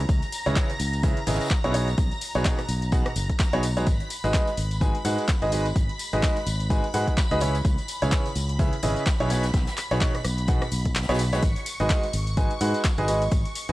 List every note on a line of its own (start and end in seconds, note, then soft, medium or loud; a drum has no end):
0.00 3.88 A#5 medium
0.00 3.88 A#6 medium
0.09 0.20 C#2 loud
0.09 kick loud
0.09 closed hi-hat medium
0.09 tambourine medium
0.22 closed hi-hat soft
0.22 tambourine soft
0.32 closed hi-hat medium
0.32 open hi-hat loud
0.32 tambourine medium
0.46 0.54 C#2 medium
0.46 0.55 C#3 medium
0.46 0.55 C#4 medium
0.46 0.55 E4 medium
0.46 0.55 G#4 medium
0.46 0.55 B4 medium
0.46 0.55 C#5 medium
0.46 closed hi-hat soft
0.46 tambourine soft
0.56 0.69 C#3 medium
0.56 0.69 C#4 medium
0.56 0.69 E4 medium
0.56 0.69 C#5 medium
0.56 kick loud
0.56 snare loud
0.56 clap loud
0.56 closed hi-hat medium
0.56 tambourine medium
0.69 closed hi-hat soft
0.69 tambourine soft
0.79 1.13 C#2 medium
0.79 closed hi-hat medium
0.79 open hi-hat loud
0.79 tambourine medium
0.93 closed hi-hat soft
0.93 tambourine soft
1.03 1.16 C#3 medium
1.03 1.16 C#4 medium
1.03 1.16 E4 medium
1.03 1.16 G#4 medium
1.03 1.16 B4 medium
1.03 1.16 E5 medium
1.03 kick loud
1.03 closed hi-hat loud
1.03 closed hi-hat medium
1.03 tambourine medium
1.17 closed hi-hat soft
1.17 tambourine soft
1.26 1.38 G#1 medium
1.26 1.46 C#3 medium
1.26 1.46 C#4 medium
1.26 1.46 E4 medium
1.26 1.46 G#4 medium
1.26 1.46 B4 medium
1.26 1.46 D#5 medium
1.26 snare medium
1.26 closed hi-hat medium
1.26 open hi-hat loud
1.26 tambourine loud
1.34 snare loud
1.34 closed hi-hat medium
1.40 snare medium
1.40 closed hi-hat soft
1.40 closed hi-hat medium
1.40 tambourine soft
1.45 snare medium
1.45 closed hi-hat medium
1.50 kick loud
1.50 snare loud
1.50 clap loud
1.50 closed hi-hat medium
1.64 1.95 B1 medium
1.64 1.72 B2 loud
1.64 1.72 C#4 medium
1.64 1.72 E4 medium
1.64 1.72 G#4 medium
1.64 1.72 B4 medium
1.64 1.72 C#5 loud
1.64 closed hi-hat soft
1.64 tambourine soft
1.74 1.87 B2 medium
1.74 1.87 D#4 medium
1.74 1.87 F#4 medium
1.74 1.87 G#4 medium
1.74 1.87 B4 medium
1.74 1.87 C#5 medium
1.74 closed hi-hat medium
1.74 open hi-hat loud
1.74 tambourine loud
1.88 closed hi-hat soft
1.88 tambourine soft
1.98 2.09 B1 loud
1.98 kick loud
1.98 closed hi-hat medium
1.98 tambourine medium
2.11 closed hi-hat soft
2.11 tambourine soft
2.21 closed hi-hat medium
2.21 open hi-hat loud
2.21 tambourine medium
2.34 2.43 B1 medium
2.34 2.44 B2 medium
2.34 2.44 D#4 medium
2.34 2.44 F#4 medium
2.34 2.44 G#4 medium
2.34 2.44 B4 medium
2.34 2.44 C#5 medium
2.34 snare soft
2.34 closed hi-hat soft
2.34 tambourine soft
2.45 2.58 B2 medium
2.45 2.58 D#4 medium
2.45 2.58 F#4 medium
2.45 2.58 G#4 medium
2.45 2.58 B4 medium
2.45 2.58 C#5 medium
2.45 kick loud
2.45 snare loud
2.45 clap loud
2.45 closed hi-hat medium
2.45 tambourine medium
2.58 cross-stick medium
2.58 closed hi-hat soft
2.58 tambourine soft
2.69 3.02 B1 medium
2.69 closed hi-hat medium
2.69 open hi-hat loud
2.69 tambourine medium
2.82 closed hi-hat soft
2.82 tambourine soft
2.92 3.05 B2 medium
2.92 3.05 D#4 medium
2.92 3.05 F#4 medium
2.92 3.05 G#4 medium
2.92 3.05 B4 medium
2.92 3.05 F#5 medium
2.92 kick loud
2.92 closed hi-hat medium
2.92 tambourine medium
3.06 cross-stick medium
3.06 closed hi-hat soft
3.06 tambourine soft
3.16 3.27 F#1 medium
3.16 closed hi-hat medium
3.16 open hi-hat loud
3.16 tambourine loud
3.30 kick medium
3.30 closed hi-hat soft
3.30 tambourine soft
3.39 kick loud
3.39 snare loud
3.39 clap loud
3.39 closed hi-hat medium
3.39 tambourine medium
3.53 3.84 B1 medium
3.53 3.63 B2 loud
3.53 3.63 D#4 medium
3.53 3.63 F#4 medium
3.53 3.63 G#4 medium
3.53 3.63 B4 medium
3.53 3.63 C#5 loud
3.53 closed hi-hat soft
3.53 tambourine soft
3.63 closed hi-hat medium
3.63 open hi-hat loud
3.63 tambourine medium
3.77 3.86 G#3 medium
3.77 3.86 D#4 medium
3.77 3.86 F#4 medium
3.77 3.86 G#4 medium
3.77 3.86 B4 medium
3.77 3.86 C#5 medium
3.77 closed hi-hat soft
3.77 tambourine soft
3.87 3.98 G#1 loud
3.87 11.44 B5 medium
3.87 11.44 B6 medium
3.87 kick loud
3.87 closed hi-hat medium
3.87 tambourine medium
4.00 closed hi-hat soft
4.00 tambourine soft
4.10 closed hi-hat medium
4.10 open hi-hat loud
4.10 tambourine loud
4.24 4.32 G#1 medium
4.24 4.33 G#3 medium
4.24 4.33 D#4 medium
4.24 4.33 F#4 medium
4.24 4.33 G#4 medium
4.24 4.33 B4 medium
4.24 4.33 D#5 medium
4.24 closed hi-hat soft
4.24 tambourine soft
4.34 4.47 G#3 medium
4.34 4.47 D#4 medium
4.34 4.47 F#4 medium
4.34 4.47 G#4 medium
4.34 4.47 B4 medium
4.34 4.47 D#5 medium
4.34 kick loud
4.34 snare loud
4.34 clap loud
4.34 closed hi-hat medium
4.34 tambourine medium
4.48 closed hi-hat soft
4.48 tambourine soft
4.57 4.91 G#1 medium
4.57 closed hi-hat medium
4.57 open hi-hat loud
4.57 tambourine medium
4.71 closed hi-hat soft
4.71 tambourine soft
4.81 4.94 G#3 medium
4.81 4.94 D#4 medium
4.81 4.94 F#4 medium
4.81 4.94 G#4 medium
4.81 4.94 B4 medium
4.81 4.94 G#5 medium
4.81 kick loud
4.81 closed hi-hat medium
4.81 tambourine medium
4.95 closed hi-hat soft
4.95 tambourine soft
5.05 5.16 G#2 medium
5.05 5.24 G#3 medium
5.05 5.24 D#4 medium
5.05 5.24 F#4 medium
5.05 5.24 G#4 medium
5.05 5.24 B4 medium
5.05 5.24 F#5 medium
5.05 closed hi-hat medium
5.05 open hi-hat loud
5.05 tambourine medium
5.18 closed hi-hat soft
5.18 tambourine soft
5.28 kick loud
5.28 snare loud
5.28 clap loud
5.28 closed hi-hat medium
5.28 tambourine soft
5.42 5.73 G#1 medium
5.42 5.50 G#3 medium
5.42 5.50 D#4 medium
5.42 5.50 F#4 medium
5.42 5.50 G#4 medium
5.42 5.50 B4 medium
5.42 5.50 D#5 loud
5.42 closed hi-hat soft
5.42 tambourine soft
5.52 5.65 G#3 medium
5.52 5.65 D#4 medium
5.52 5.65 F#4 medium
5.52 5.65 G#4 medium
5.52 5.65 B4 medium
5.52 5.65 D#5 medium
5.52 closed hi-hat medium
5.52 open hi-hat loud
5.52 tambourine medium
5.65 closed hi-hat soft
5.65 tambourine soft
5.76 kick loud
5.76 closed hi-hat medium
5.76 tambourine medium
5.89 closed hi-hat soft
5.89 tambourine soft
5.99 closed hi-hat medium
5.99 open hi-hat loud
5.99 tambourine medium
6.13 6.21 G#1 medium
6.13 6.22 G#3 medium
6.13 6.22 D#4 medium
6.13 6.22 F#4 medium
6.13 6.21 G#4 medium
6.13 6.22 B4 medium
6.13 6.22 D#5 medium
6.13 snare soft
6.13 closed hi-hat soft
6.13 tambourine soft
6.23 6.36 G#3 medium
6.23 6.36 D#4 medium
6.23 6.36 G#4 medium
6.23 6.36 D#5 medium
6.23 kick loud
6.23 snare loud
6.23 clap loud
6.23 closed hi-hat medium
6.23 tambourine soft
6.36 closed hi-hat soft
6.36 tambourine soft
6.47 6.80 G#1 medium
6.47 closed hi-hat medium
6.47 open hi-hat loud
6.47 tambourine medium
6.60 closed hi-hat soft
6.60 tambourine soft
6.70 6.83 G#3 medium
6.70 6.83 D#4 medium
6.70 6.83 F#4 medium
6.70 6.83 G#4 medium
6.70 6.83 B4 medium
6.70 6.83 G#5 medium
6.70 kick loud
6.70 closed hi-hat medium
6.70 tambourine medium
6.84 closed hi-hat soft
6.84 tambourine soft
6.94 7.05 G#2 medium
6.94 7.13 G#3 medium
6.94 7.13 D#4 medium
6.94 7.13 F#4 medium
6.94 7.13 G#4 medium
6.94 7.13 B4 medium
6.94 7.13 F#5 medium
6.94 closed hi-hat medium
6.94 open hi-hat loud
6.94 tambourine medium
7.07 kick medium
7.07 closed hi-hat soft
7.07 tambourine soft
7.17 kick loud
7.17 snare loud
7.17 clap loud
7.17 closed hi-hat medium
7.17 tambourine soft
7.31 7.62 C#2 medium
7.31 7.39 D#4 medium
7.31 7.39 F#4 medium
7.31 7.39 G#4 medium
7.31 7.39 B4 medium
7.31 7.39 D#5 loud
7.31 closed hi-hat soft
7.31 tambourine soft
7.40 7.54 C#3 medium
7.40 7.54 C#4 medium
7.40 7.54 E4 medium
7.40 7.54 G#4 medium
7.40 7.54 B4 medium
7.40 7.54 C#5 medium
7.40 closed hi-hat medium
7.40 open hi-hat loud
7.40 tambourine medium
7.54 closed hi-hat soft
7.54 tambourine soft
7.65 7.76 C#2 loud
7.65 kick loud
7.65 closed hi-hat medium
7.65 tambourine soft
7.78 closed hi-hat soft
7.78 tambourine soft
7.88 closed hi-hat medium
7.88 open hi-hat loud
7.88 tambourine medium
8.02 8.10 C#2 medium
8.02 8.10 C#3 medium
8.02 8.10 C#4 medium
8.02 8.10 E4 medium
8.02 8.10 G#4 medium
8.02 8.10 B4 medium
8.02 8.10 C#5 loud
8.02 closed hi-hat soft
8.02 tambourine soft
8.11 8.25 C#3 medium
8.11 8.25 E4 medium
8.11 8.25 B4 medium
8.11 8.25 C#5 medium
8.11 kick loud
8.11 snare loud
8.11 clap loud
8.11 closed hi-hat medium
8.11 tambourine soft
8.26 closed hi-hat soft
8.26 tambourine soft
8.36 8.69 C#2 medium
8.36 closed hi-hat medium
8.36 open hi-hat loud
8.36 tambourine medium
8.49 closed hi-hat soft
8.49 tambourine soft
8.59 8.72 C#3 medium
8.59 8.72 C#4 medium
8.59 8.72 E4 medium
8.59 8.72 G#4 medium
8.59 8.72 B4 medium
8.59 8.72 E5 medium
8.59 kick loud
8.59 closed hi-hat medium
8.59 tambourine soft
8.73 closed hi-hat soft
8.73 tambourine soft
8.82 8.94 G#1 medium
8.82 9.02 C#3 medium
8.82 9.02 C#4 medium
8.82 9.02 E4 medium
8.82 9.02 G#4 medium
8.82 9.02 B4 medium
8.82 9.02 D#5 medium
8.82 closed hi-hat medium
8.82 open hi-hat loud
8.82 tambourine medium
8.96 closed hi-hat soft
8.96 tambourine soft
9.06 kick loud
9.06 snare loud
9.06 clap loud
9.06 closed hi-hat medium
9.06 tambourine medium
9.20 9.51 B1 medium
9.20 9.28 B2 loud
9.20 9.28 C#4 medium
9.20 9.28 E4 medium
9.20 9.28 G#4 medium
9.20 9.28 B4 medium
9.20 9.28 C#5 loud
9.20 closed hi-hat soft
9.20 tambourine soft
9.30 9.43 B2 medium
9.30 9.43 D#4 medium
9.30 9.43 F#4 medium
9.30 9.43 G#4 medium
9.30 9.43 B4 medium
9.30 9.43 C#5 medium
9.30 snare loud
9.30 closed hi-hat medium
9.30 open hi-hat loud
9.30 tambourine medium
9.43 snare medium
9.43 closed hi-hat medium
9.43 closed hi-hat soft
9.43 tambourine soft
9.53 kick loud
9.53 snare loud
9.53 closed hi-hat medium
9.53 tambourine medium
9.67 snare loud
9.67 closed hi-hat medium
9.67 closed hi-hat soft
9.67 tambourine soft
9.77 clap medium
9.77 closed hi-hat medium
9.77 open hi-hat loud
9.77 tambourine medium
9.91 9.99 B1 medium
9.91 10.00 B2 medium
9.91 10.00 D#4 medium
9.91 10.00 F#4 medium
9.91 10.00 G#4 medium
9.91 10.00 B4 medium
9.91 10.00 C#5 loud
9.91 snare soft
9.91 closed hi-hat soft
9.91 tambourine soft
10.00 10.14 B2 medium
10.00 10.14 D#4 medium
10.00 10.14 F#4 medium
10.00 10.14 B4 medium
10.00 10.14 C#5 medium
10.00 kick loud
10.00 snare loud
10.00 clap loud
10.00 closed hi-hat medium
10.00 tambourine soft
10.14 cross-stick medium
10.14 closed hi-hat soft
10.14 tambourine soft
10.24 10.58 B1 medium
10.24 cross-stick medium
10.24 closed hi-hat medium
10.24 open hi-hat loud
10.24 tambourine medium
10.38 closed hi-hat soft
10.38 tambourine soft
10.47 10.61 B2 medium
10.47 10.61 D#4 medium
10.47 10.61 F#4 medium
10.47 10.61 G#4 medium
10.47 10.61 B4 medium
10.47 10.61 F#5 medium
10.47 kick loud
10.47 closed hi-hat medium
10.47 tambourine medium
10.62 cross-stick medium
10.62 closed hi-hat soft
10.62 tambourine soft
10.72 11.05 B1 medium
10.72 closed hi-hat medium
10.72 open hi-hat loud
10.72 tambourine medium
10.85 kick medium
10.85 closed hi-hat soft
10.85 tambourine soft
10.95 snare medium
10.95 clap loud
10.95 closed hi-hat medium
10.95 tambourine medium
11.03 snare medium
11.03 closed hi-hat medium
11.09 11.40 B1 loud
11.09 11.19 B2 loud
11.09 11.19 D#4 medium
11.09 11.19 F#4 medium
11.09 11.19 G#4 medium
11.09 11.19 B4 medium
11.09 11.19 C#5 loud
11.09 snare medium
11.09 closed hi-hat medium
11.09 closed hi-hat soft
11.09 tambourine soft
11.14 snare loud
11.14 closed hi-hat medium
11.18 snare loud
11.18 closed hi-hat medium
11.18 open hi-hat loud
11.18 tambourine medium
11.32 11.42 G#3 medium
11.32 11.42 D#4 medium
11.32 11.42 F#4 medium
11.32 11.42 G#4 medium
11.32 11.42 B4 medium
11.32 11.42 C#5 medium
11.32 snare loud
11.32 closed hi-hat soft
11.32 closed hi-hat medium
11.32 tambourine soft
11.43 11.54 G#1 loud
11.43 13.72 C#6 medium
11.43 13.72 C#7 medium
11.43 kick loud
11.43 closed hi-hat medium
11.43 ride medium
11.43 tambourine soft
11.56 closed hi-hat soft
11.56 tambourine soft
11.66 closed hi-hat medium
11.66 open hi-hat loud
11.66 ride medium
11.66 tambourine medium
11.80 11.88 G#1 medium
11.80 11.89 G#3 medium
11.80 11.88 D#4 medium
11.80 11.89 F#4 medium
11.80 11.88 G#4 medium
11.80 11.88 B4 medium
11.80 11.89 D#5 medium
11.80 closed hi-hat soft
11.80 tambourine soft
11.90 kick loud
11.90 snare loud
11.90 clap loud
11.90 closed hi-hat medium
11.90 ride medium
11.90 tambourine soft
12.03 closed hi-hat soft
12.03 tambourine soft
12.13 12.47 G#1 medium
12.13 closed hi-hat medium
12.13 open hi-hat loud
12.13 ride medium
12.13 tambourine medium
12.27 closed hi-hat soft
12.27 tambourine soft
12.37 12.50 G#3 medium
12.37 12.50 D#4 medium
12.37 12.50 F#4 medium
12.37 12.50 G#4 medium
12.37 12.50 B4 medium
12.37 12.50 G#5 medium
12.37 kick loud
12.37 closed hi-hat medium
12.37 ride medium
12.37 tambourine soft
12.51 closed hi-hat soft
12.51 tambourine soft
12.61 12.72 G#2 medium
12.61 12.80 G#3 medium
12.61 12.80 D#4 medium
12.61 12.80 F#4 medium
12.61 12.80 G#4 medium
12.61 12.80 B4 medium
12.61 12.80 F#5 medium
12.61 closed hi-hat medium
12.61 open hi-hat loud
12.61 ride medium
12.61 tambourine loud
12.74 closed hi-hat soft
12.74 tambourine soft
12.84 kick loud
12.84 snare loud
12.84 clap loud
12.84 closed hi-hat medium
12.84 ride medium
12.84 tambourine medium
12.98 13.29 G#1 medium
12.98 13.06 G#3 medium
12.98 13.06 D#4 medium
12.98 13.06 F#4 medium
12.98 13.06 G#4 medium
12.98 13.06 B4 medium
12.98 13.06 D#5 loud
12.98 closed hi-hat soft
12.98 tambourine soft
13.08 13.21 G#3 medium
13.08 13.21 D#4 medium
13.08 13.21 F#4 medium
13.08 13.21 G#4 medium
13.08 13.21 B4 medium
13.08 13.21 D#5 medium
13.08 closed hi-hat medium
13.08 open hi-hat loud
13.08 ride medium
13.08 tambourine medium
13.22 closed hi-hat soft
13.22 tambourine soft
13.31 13.43 G#1 loud
13.31 kick loud
13.31 closed hi-hat medium
13.31 ride medium
13.31 tambourine medium
13.45 closed hi-hat soft
13.45 tambourine soft
13.55 closed hi-hat medium
13.55 open hi-hat loud
13.55 ride medium
13.55 tambourine medium
13.69 13.72 G#1 medium
13.69 13.72 G#3 medium
13.69 13.72 D#4 medium
13.69 13.72 F#4 medium
13.69 13.72 G#4 medium
13.69 13.72 B4 medium
13.69 13.72 D#5 medium
13.69 snare soft
13.69 closed hi-hat soft
13.69 tambourine soft